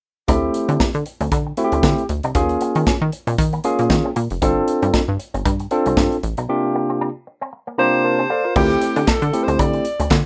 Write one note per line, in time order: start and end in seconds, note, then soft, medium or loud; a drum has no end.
0.28 0.50 D2 loud
0.28 0.87 A3 medium
0.28 0.87 C4 medium
0.28 0.38 D4 medium
0.28 0.87 E4 medium
0.28 0.88 G4 medium
0.28 kick loud
0.28 closed hi-hat medium
0.54 muted clean electric guitar stroke soft
0.54 closed hi-hat medium
0.69 0.78 D3 loud
0.69 0.76 C4 medium
0.69 closed hi-hat soft
0.80 0.90 D4 medium
0.80 kick loud
0.80 snare loud
0.94 1.04 D3 medium
0.94 closed hi-hat soft
1.06 muted clean electric guitar stroke soft
1.06 closed hi-hat medium
1.21 1.30 D2 medium
1.21 1.28 C4 medium
1.21 closed hi-hat medium
1.32 1.53 D3 medium
1.32 1.42 D4 medium
1.32 kick loud
1.32 closed hi-hat medium
1.47 muted clean electric guitar stroke soft
1.57 2.02 A3 medium
1.57 2.02 C4 medium
1.57 2.02 E4 medium
1.57 1.65 F#4 medium
1.57 closed hi-hat medium
1.64 2.06 G4 medium
1.72 1.82 D2 medium
1.72 1.80 C4 medium
1.72 closed hi-hat medium
1.83 1.95 D3 loud
1.83 1.94 A3 medium
1.83 kick loud
1.83 snare loud
1.98 closed hi-hat soft
2.09 2.21 D2 medium
2.09 muted clean electric guitar stroke soft
2.09 closed hi-hat medium
2.23 2.33 C2 medium
2.23 2.32 D4 medium
2.23 closed hi-hat soft
2.35 2.56 D#2 loud
2.35 2.94 A#3 medium
2.35 2.94 C#4 medium
2.35 2.94 F4 medium
2.35 2.94 G#4 medium
2.35 kick loud
2.35 closed hi-hat medium
2.49 muted clean electric guitar stroke soft
2.49 closed hi-hat soft
2.61 2.71 A#3 medium
2.61 closed hi-hat medium
2.75 2.85 D#3 medium
2.75 2.83 C4 medium
2.75 closed hi-hat soft
2.87 2.93 D#3 soft
2.87 2.97 C#4 medium
2.87 kick loud
2.87 snare loud
3.02 3.11 D#3 loud
3.12 muted clean electric guitar stroke soft
3.12 closed hi-hat medium
3.27 3.37 A#2 loud
3.27 3.35 C4 medium
3.27 closed hi-hat medium
3.38 3.60 D#3 loud
3.38 muted clean electric guitar stroke soft
3.38 kick loud
3.38 closed hi-hat medium
3.53 3.61 A#3 medium
3.53 closed hi-hat soft
3.64 3.74 G#3 medium
3.64 4.09 A#3 medium
3.64 4.09 C#4 medium
3.64 4.09 F4 medium
3.64 4.09 G#4 medium
3.64 closed hi-hat medium
3.79 3.88 A#2 medium
3.79 closed hi-hat medium
3.90 4.02 D#3 medium
3.90 muted clean electric guitar stroke soft
3.90 kick loud
3.90 snare loud
4.05 4.13 C4 medium
4.16 4.28 A#2 medium
4.16 4.26 A#3 medium
4.16 closed hi-hat medium
4.30 4.40 F1 medium
4.30 closed hi-hat soft
4.42 4.63 G1 loud
4.42 4.52 G3 medium
4.42 5.01 C4 medium
4.42 5.01 D4 medium
4.42 5.01 F4 medium
4.42 5.01 A4 medium
4.42 kick loud
4.42 closed hi-hat medium
4.68 muted clean electric guitar stroke soft
4.68 closed hi-hat medium
4.82 4.92 G2 loud
4.82 4.90 C4 medium
4.82 closed hi-hat medium
4.94 5.04 D4 medium
4.94 kick loud
4.94 snare loud
5.08 5.18 G2 loud
5.19 muted clean electric guitar stroke soft
5.19 closed hi-hat medium
5.34 5.44 G1 medium
5.34 5.42 C4 medium
5.34 closed hi-hat medium
5.45 5.67 G2 loud
5.45 5.55 D4 medium
5.45 kick loud
5.45 closed hi-hat medium
5.60 muted clean electric guitar stroke soft
5.60 closed hi-hat soft
5.71 6.16 C4 medium
5.71 6.16 D4 medium
5.71 6.16 F4 medium
5.71 6.16 A4 medium
5.71 closed hi-hat medium
5.86 5.95 C2 medium
5.86 5.94 C4 medium
5.86 closed hi-hat medium
5.97 6.09 G2 loud
5.97 6.07 A3 medium
5.97 kick loud
5.97 snare loud
6.12 closed hi-hat soft
6.23 6.35 A1 medium
6.23 muted clean electric guitar stroke soft
6.23 closed hi-hat medium
6.37 6.47 B1 medium
6.37 6.45 D4 medium
6.37 closed hi-hat soft
6.49 7.08 C3 medium
6.49 7.08 A#3 medium
6.49 7.08 D4 medium
6.49 7.08 F4 medium
6.49 7.08 G4 medium
6.64 muted clean electric guitar stroke soft
6.75 6.85 A#3 medium
6.90 6.97 C4 medium
7.01 7.11 D4 medium
7.27 muted clean electric guitar stroke soft
7.41 7.49 C4 medium
7.53 muted clean electric guitar stroke soft
7.67 7.75 A#3 medium
7.78 8.23 C3 medium
7.78 7.88 G3 medium
7.78 8.23 A#3 medium
7.78 8.23 D4 medium
7.78 8.04 F4 medium
7.78 8.04 G4 medium
7.78 8.52 C5 loud
7.78 8.02 A#5 medium
8.04 8.18 F4 soft
8.04 8.18 A#4 medium
8.04 8.28 A5 medium
8.04 muted clean electric guitar stroke soft
8.18 8.27 C4 medium
8.18 8.30 G4 medium
8.18 8.29 C5 medium
8.30 8.40 A#3 medium
8.30 8.44 A4 medium
8.30 8.44 D5 medium
8.30 8.54 F5 medium
8.44 8.69 F4 medium
8.44 8.69 A#4 medium
8.56 8.77 D2 loud
8.56 9.00 A3 medium
8.56 9.00 C4 medium
8.56 8.66 D4 medium
8.56 9.01 E4 medium
8.56 9.01 G4 medium
8.56 9.10 G4 loud
8.56 kick loud
8.56 crash medium
8.70 closed hi-hat soft
8.81 muted clean electric guitar stroke soft
8.81 closed hi-hat medium
8.96 9.06 D3 medium
8.96 9.04 C4 medium
8.96 closed hi-hat medium
9.07 9.18 D4 medium
9.07 9.45 A4 medium
9.07 kick loud
9.07 snare loud
9.07 clap medium
9.22 9.31 D3 loud
9.22 closed hi-hat soft
9.33 9.84 A3 medium
9.33 9.85 C4 medium
9.33 9.85 E4 medium
9.33 9.85 G4 medium
9.33 muted clean electric guitar stroke soft
9.33 closed hi-hat medium
9.43 9.62 C5 medium
9.48 9.57 D2 loud
9.48 9.56 C4 medium
9.48 closed hi-hat medium
9.59 9.81 D3 medium
9.59 9.69 D4 loud
9.59 10.11 D5 loud
9.59 kick loud
9.59 closed hi-hat medium
9.73 muted clean electric guitar stroke soft
9.73 closed hi-hat soft
9.85 closed hi-hat medium
10.00 10.09 D2 medium
10.00 10.08 C4 medium
10.00 closed hi-hat medium
10.11 10.23 D3 loud
10.11 10.21 A3 medium
10.11 kick loud
10.11 snare loud
10.11 clap loud